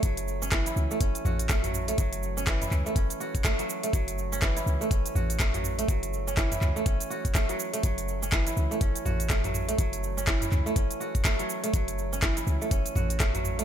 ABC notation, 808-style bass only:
X:1
M:4/4
L:1/8
Q:"Swing 16ths" 1/4=123
K:F#m
V:1 name="808-style bass" clef=bass
F,,,3 C,, z A,,,3 | F,,,3 C,, z4 | F,,,3 C,, z A,,,3 | F,,,3 C,, z4 |
F,,,3 C,, z A,,,3 | F,,,3 C,, z4 | F,,,3 C,, z A,,,3 |]